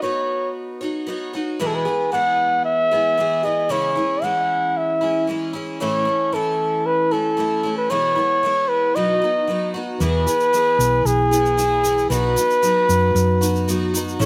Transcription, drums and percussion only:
0, 0, Header, 1, 2, 480
1, 0, Start_track
1, 0, Key_signature, 4, "major"
1, 0, Tempo, 524934
1, 1469, Time_signature, 4, 2, 24, 8
1, 13036, End_track
2, 0, Start_track
2, 0, Title_t, "Drums"
2, 9150, Note_on_c, 9, 82, 54
2, 9241, Note_off_c, 9, 82, 0
2, 9395, Note_on_c, 9, 82, 69
2, 9486, Note_off_c, 9, 82, 0
2, 9513, Note_on_c, 9, 82, 23
2, 9604, Note_off_c, 9, 82, 0
2, 9635, Note_on_c, 9, 82, 59
2, 9727, Note_off_c, 9, 82, 0
2, 9879, Note_on_c, 9, 82, 73
2, 9971, Note_off_c, 9, 82, 0
2, 10117, Note_on_c, 9, 82, 58
2, 10208, Note_off_c, 9, 82, 0
2, 10359, Note_on_c, 9, 82, 74
2, 10451, Note_off_c, 9, 82, 0
2, 10476, Note_on_c, 9, 82, 23
2, 10567, Note_off_c, 9, 82, 0
2, 10593, Note_on_c, 9, 82, 59
2, 10684, Note_off_c, 9, 82, 0
2, 10832, Note_on_c, 9, 82, 81
2, 10924, Note_off_c, 9, 82, 0
2, 10955, Note_on_c, 9, 82, 22
2, 11047, Note_off_c, 9, 82, 0
2, 11078, Note_on_c, 9, 82, 63
2, 11169, Note_off_c, 9, 82, 0
2, 11313, Note_on_c, 9, 82, 77
2, 11404, Note_off_c, 9, 82, 0
2, 11434, Note_on_c, 9, 82, 24
2, 11525, Note_off_c, 9, 82, 0
2, 11551, Note_on_c, 9, 82, 68
2, 11642, Note_off_c, 9, 82, 0
2, 11793, Note_on_c, 9, 82, 73
2, 11884, Note_off_c, 9, 82, 0
2, 12035, Note_on_c, 9, 82, 63
2, 12126, Note_off_c, 9, 82, 0
2, 12274, Note_on_c, 9, 82, 78
2, 12366, Note_off_c, 9, 82, 0
2, 12397, Note_on_c, 9, 82, 23
2, 12488, Note_off_c, 9, 82, 0
2, 12515, Note_on_c, 9, 82, 59
2, 12607, Note_off_c, 9, 82, 0
2, 12756, Note_on_c, 9, 82, 81
2, 12848, Note_off_c, 9, 82, 0
2, 12879, Note_on_c, 9, 82, 23
2, 12971, Note_off_c, 9, 82, 0
2, 12998, Note_on_c, 9, 82, 62
2, 13036, Note_off_c, 9, 82, 0
2, 13036, End_track
0, 0, End_of_file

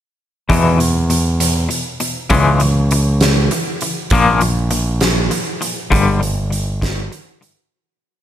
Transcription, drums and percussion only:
0, 0, Header, 1, 2, 480
1, 0, Start_track
1, 0, Tempo, 602410
1, 400, Time_signature, 6, 3, 24, 8
1, 6550, End_track
2, 0, Start_track
2, 0, Title_t, "Drums"
2, 395, Note_on_c, 9, 42, 71
2, 397, Note_on_c, 9, 36, 88
2, 475, Note_off_c, 9, 42, 0
2, 477, Note_off_c, 9, 36, 0
2, 639, Note_on_c, 9, 42, 50
2, 718, Note_off_c, 9, 42, 0
2, 877, Note_on_c, 9, 42, 55
2, 956, Note_off_c, 9, 42, 0
2, 1118, Note_on_c, 9, 42, 72
2, 1198, Note_off_c, 9, 42, 0
2, 1359, Note_on_c, 9, 42, 51
2, 1439, Note_off_c, 9, 42, 0
2, 1594, Note_on_c, 9, 42, 51
2, 1674, Note_off_c, 9, 42, 0
2, 1832, Note_on_c, 9, 42, 72
2, 1837, Note_on_c, 9, 36, 94
2, 1911, Note_off_c, 9, 42, 0
2, 1917, Note_off_c, 9, 36, 0
2, 2069, Note_on_c, 9, 42, 51
2, 2149, Note_off_c, 9, 42, 0
2, 2317, Note_on_c, 9, 42, 55
2, 2396, Note_off_c, 9, 42, 0
2, 2554, Note_on_c, 9, 42, 66
2, 2558, Note_on_c, 9, 38, 90
2, 2634, Note_off_c, 9, 42, 0
2, 2637, Note_off_c, 9, 38, 0
2, 2796, Note_on_c, 9, 42, 49
2, 2876, Note_off_c, 9, 42, 0
2, 3033, Note_on_c, 9, 42, 47
2, 3113, Note_off_c, 9, 42, 0
2, 3268, Note_on_c, 9, 42, 66
2, 3277, Note_on_c, 9, 36, 86
2, 3348, Note_off_c, 9, 42, 0
2, 3356, Note_off_c, 9, 36, 0
2, 3511, Note_on_c, 9, 42, 44
2, 3591, Note_off_c, 9, 42, 0
2, 3749, Note_on_c, 9, 42, 52
2, 3829, Note_off_c, 9, 42, 0
2, 3989, Note_on_c, 9, 42, 60
2, 3992, Note_on_c, 9, 38, 80
2, 4069, Note_off_c, 9, 42, 0
2, 4072, Note_off_c, 9, 38, 0
2, 4230, Note_on_c, 9, 42, 50
2, 4310, Note_off_c, 9, 42, 0
2, 4476, Note_on_c, 9, 42, 49
2, 4556, Note_off_c, 9, 42, 0
2, 4715, Note_on_c, 9, 42, 72
2, 4716, Note_on_c, 9, 36, 92
2, 4795, Note_off_c, 9, 42, 0
2, 4796, Note_off_c, 9, 36, 0
2, 4961, Note_on_c, 9, 42, 48
2, 5041, Note_off_c, 9, 42, 0
2, 5198, Note_on_c, 9, 42, 54
2, 5278, Note_off_c, 9, 42, 0
2, 5436, Note_on_c, 9, 36, 61
2, 5439, Note_on_c, 9, 42, 64
2, 5442, Note_on_c, 9, 38, 83
2, 5516, Note_off_c, 9, 36, 0
2, 5519, Note_off_c, 9, 42, 0
2, 5522, Note_off_c, 9, 38, 0
2, 5676, Note_on_c, 9, 42, 54
2, 5756, Note_off_c, 9, 42, 0
2, 5915, Note_on_c, 9, 42, 55
2, 5995, Note_off_c, 9, 42, 0
2, 6550, End_track
0, 0, End_of_file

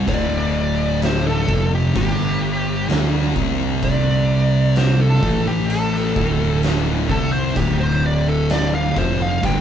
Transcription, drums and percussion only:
0, 0, Header, 1, 2, 480
1, 0, Start_track
1, 0, Key_signature, -1, "minor"
1, 0, Tempo, 936037
1, 38, Time_signature, 4, 2, 24, 8
1, 4927, End_track
2, 0, Start_track
2, 0, Title_t, "Drums"
2, 39, Note_on_c, 9, 36, 117
2, 41, Note_on_c, 9, 49, 62
2, 91, Note_off_c, 9, 36, 0
2, 93, Note_off_c, 9, 49, 0
2, 523, Note_on_c, 9, 49, 64
2, 530, Note_on_c, 9, 38, 113
2, 574, Note_off_c, 9, 49, 0
2, 582, Note_off_c, 9, 38, 0
2, 762, Note_on_c, 9, 36, 112
2, 813, Note_off_c, 9, 36, 0
2, 1003, Note_on_c, 9, 36, 117
2, 1008, Note_on_c, 9, 49, 71
2, 1055, Note_off_c, 9, 36, 0
2, 1059, Note_off_c, 9, 49, 0
2, 1485, Note_on_c, 9, 49, 64
2, 1492, Note_on_c, 9, 38, 116
2, 1536, Note_off_c, 9, 49, 0
2, 1544, Note_off_c, 9, 38, 0
2, 1723, Note_on_c, 9, 36, 96
2, 1775, Note_off_c, 9, 36, 0
2, 1963, Note_on_c, 9, 36, 102
2, 1964, Note_on_c, 9, 49, 63
2, 2014, Note_off_c, 9, 36, 0
2, 2015, Note_off_c, 9, 49, 0
2, 2440, Note_on_c, 9, 49, 57
2, 2447, Note_on_c, 9, 38, 109
2, 2491, Note_off_c, 9, 49, 0
2, 2498, Note_off_c, 9, 38, 0
2, 2681, Note_on_c, 9, 36, 117
2, 2732, Note_off_c, 9, 36, 0
2, 2922, Note_on_c, 9, 49, 67
2, 2973, Note_off_c, 9, 49, 0
2, 3047, Note_on_c, 9, 38, 35
2, 3098, Note_off_c, 9, 38, 0
2, 3160, Note_on_c, 9, 36, 110
2, 3211, Note_off_c, 9, 36, 0
2, 3400, Note_on_c, 9, 49, 58
2, 3407, Note_on_c, 9, 38, 108
2, 3451, Note_off_c, 9, 49, 0
2, 3459, Note_off_c, 9, 38, 0
2, 3638, Note_on_c, 9, 36, 97
2, 3690, Note_off_c, 9, 36, 0
2, 3876, Note_on_c, 9, 49, 67
2, 3878, Note_on_c, 9, 36, 102
2, 3927, Note_off_c, 9, 49, 0
2, 3929, Note_off_c, 9, 36, 0
2, 4357, Note_on_c, 9, 49, 68
2, 4364, Note_on_c, 9, 38, 116
2, 4408, Note_off_c, 9, 49, 0
2, 4415, Note_off_c, 9, 38, 0
2, 4597, Note_on_c, 9, 36, 121
2, 4648, Note_off_c, 9, 36, 0
2, 4837, Note_on_c, 9, 49, 71
2, 4838, Note_on_c, 9, 36, 119
2, 4889, Note_off_c, 9, 36, 0
2, 4889, Note_off_c, 9, 49, 0
2, 4927, End_track
0, 0, End_of_file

